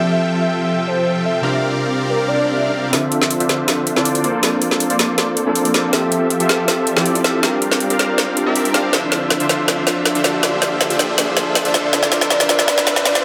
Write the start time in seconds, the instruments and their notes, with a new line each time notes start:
Already playing: string section C3 F3 A4 E5, tine electric piano F3 C4 G4 A4 E5, supersaw synth F3 F4 A4 E5 G5
0.12 soft synth lead E5
0.40 soft synth lead E5
0.59 soft synth lead E5
0.87 soft synth lead C5
1.25 soft synth lead E5
1.41 tine electric piano C3 D4 F4 G4 A#4, string section G3 F4 A#4, supersaw synth C4 G4 A#4 D5 F5
1.53 soft synth lead E5
2.09 soft synth lead A#4
2.18 swell
2.28 soft synth lead D5
2.56 soft synth lead E5
2.91 supersaw synth D3 D4 F4 C5 E5, string section F3 C4 D4 A4, tine electric piano C4 F4 A4 E5, soft synth lead D5, snare, closed hi-hat, riser
3.12 soft synth lead D5, closed hi-hat
3.22 snare
3.31 closed hi-hat
3.40 supersaw synth D3 D4 F4 C5 E5, closed hi-hat
3.49 supersaw synth D3 D4 F4 C5 E5, snare, closed hi-hat
3.59 soft synth lead D5
3.68 snare, closed hi-hat
3.87 closed hi-hat
3.96 supersaw synth D3 D4 F4 C5 D5, tine electric piano C4 E4 F4 A4, snare
4.05 closed hi-hat
4.15 closed hi-hat
4.24 string section F3 A#3, supersaw synth A#3 F4 A4 C5 D5, closed hi-hat
4.41 supersaw synth A#3 F4 A4 C5 D5, tine electric piano C4 D4 F4, snare, closed hi-hat
4.45 tine electric piano A4
4.52 soft synth lead D5
4.62 closed hi-hat
4.71 snare
4.80 closed hi-hat
4.90 supersaw synth A#3 F4 A4 C5 D5, closed hi-hat
4.99 supersaw synth A#3 F4 A4 C5 D5, snare, closed hi-hat
5.09 soft synth lead A4
5.18 snare, closed hi-hat
5.37 closed hi-hat
5.45 supersaw synth A#3 F4 A4 C5 D5, tine electric piano C4 D4 F4 A4
5.55 soft synth lead D5, closed hi-hat
5.65 closed hi-hat
5.74 supersaw synth A#3 F4 A4 C5 D5, snare, closed hi-hat
5.91 supersaw synth F3 F4 G4 A4 E5, tine electric piano C4 G4 E5, string section C4 E5, snare, closed hi-hat
5.95 tine electric piano A4
6.12 closed hi-hat
6.30 closed hi-hat
6.40 supersaw synth F3 F4 G4 A4 E5, soft synth lead F5, closed hi-hat
6.49 supersaw synth F3 F4 G4 A4 E5, snare, closed hi-hat
6.59 soft synth lead F5
6.68 snare, closed hi-hat
6.87 soft synth lead D5, closed hi-hat
6.96 supersaw synth F3 F4 G4 A4 D5, tine electric piano C4 E4 G4 A4, snare
7.06 closed hi-hat
7.15 closed hi-hat
7.24 supersaw synth F3 F4 G4 A4 E5, soft synth lead F5, snare, closed hi-hat
7.41 string section G3 C4 F4 A#4, supersaw synth C4 G4 A#4 D5 F5, tine electric piano D4 F4 G4 A#4, snare, closed hi-hat
7.53 soft synth lead F5
7.62 closed hi-hat
7.72 snare
7.80 closed hi-hat
7.90 supersaw synth C4 G4 A#4 D5 F5, closed hi-hat
7.99 supersaw synth C4 G4 A#4 D5 F5, snare, closed hi-hat
8.09 soft synth lead D5
8.18 snare, closed hi-hat
8.28 soft synth lead A#4
8.36 tine electric piano D4 F4 G4 A#4, closed hi-hat
8.46 supersaw synth C4 G4 A#4 D5 E5
8.56 soft synth lead A#4, closed hi-hat
8.65 closed hi-hat
8.73 supersaw synth C4 G4 A#4 D5 F5, tine electric piano D4 F4 G4 A#4, snare, closed hi-hat
8.93 supersaw synth D3 D4 F4 C5 E5, string section F3 D4 A4, soft synth lead D5, snare, closed hi-hat
9.03 harp D4
9.12 harp F4, soft synth lead D5, snare, closed hi-hat
9.30 harp A4, snare, closed hi-hat
9.40 supersaw synth D3 D4 F4 C5 E5, soft synth lead D5, closed hi-hat
9.49 supersaw synth D3 D4 F4 C5 E5, harp D4, snare, closed hi-hat
9.59 soft synth lead D5
9.68 supersaw synth D3 D4 F4 C5 E5, soft synth lead D5, snare, closed hi-hat
9.78 harp D4
9.87 harp F4, soft synth lead D5, snare, closed hi-hat
10.05 harp A4, snare, closed hi-hat
10.15 supersaw synth D3 D4 F4 C5 E5, soft synth lead D5, closed hi-hat
10.24 supersaw synth D3 D4 F4 C5 E5, string section A#3, harp D4, snare, closed hi-hat
10.34 soft synth lead D5
10.43 supersaw synth D3 D4 F4 C5 E5, soft synth lead D5, snare, closed hi-hat
10.53 harp D4
10.62 harp F4, soft synth lead D5, snare, closed hi-hat
10.80 harp A4, snare, closed hi-hat
10.90 supersaw synth D3 D4 F4 C5 E5, soft synth lead D5, closed hi-hat
10.99 supersaw synth D3 D4 F4 C5 E5, harp D4, snare, closed hi-hat
11.09 soft synth lead D5
11.18 supersaw synth D3 D4 F4 C5 E5, soft synth lead D5, snare, closed hi-hat
11.28 harp D4
11.37 harp F4, snare, closed hi-hat
11.55 snare, closed hi-hat
11.65 supersaw synth D3 D4 F4 C5 E5, soft synth lead D5, closed hi-hat
11.74 supersaw synth D3 D4 F4 C5 E5, harp D4, snare, closed hi-hat
11.84 soft synth lead D5
11.93 supersaw synth D3 D4 F4 C5 E5, string section C4 E5, soft synth lead D5, snare, closed hi-hat
12.03 harp D4, snare
12.12 harp F4, soft synth lead D5, snare, closed hi-hat
12.21 snare
12.30 supersaw synth D3 D4 F4 C5 E5, soft synth lead D5, snare, closed hi-hat
12.40 harp D4, snare, closed hi-hat
12.49 harp F4, soft synth lead D5, snare, closed hi-hat
12.59 snare
12.68 supersaw synth D3 D4 F4 C5 E5, soft synth lead D5, snare, closed hi-hat
12.78 harp D4, snare
12.87 harp F4, soft synth lead D5, snare, closed hi-hat
12.96 snare
13.05 supersaw synth D3 D4 F4 C5 E5, soft synth lead D5, snare, closed hi-hat
13.15 harp D4, snare, closed hi-hat